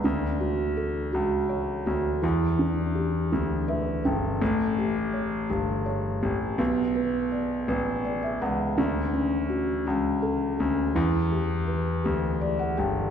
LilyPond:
<<
  \new Staff \with { instrumentName = "Felt piano" } { \time 6/8 \key d \major \tempo 4. = 55 << { r2. | r2 e''8 g''8 | r2. | r2 r16 e''16 fis''8 |
r2. | r2 r16 fis''16 g''8 | } \\ { d'8 fis'8 a'8 fis'8 cis''8 fis'8 | e8 d'8 g'8 d'8 b'8 d'8 | a8 g'8 cis''8 g'8 cis''8 g'8 | b8 b'8 d''8 b'8 d''8 b'8 |
d'8 cis'8 fis'8 cis'8 a'8 cis'8 | e8 g'8 b'8 g'8 d''8 g'8 | } >> }
  \new Staff \with { instrumentName = "Grand piano" } { \clef bass \time 6/8 \key d \major d,4. cis,4 d,8 | e,4. d,4 g,,8 | a,,4. g,,4 a,,8 | b,,4. a,,4 cis,8 |
d,4. cis,4 d,8 | e,4. d,4 g,,8 | }
>>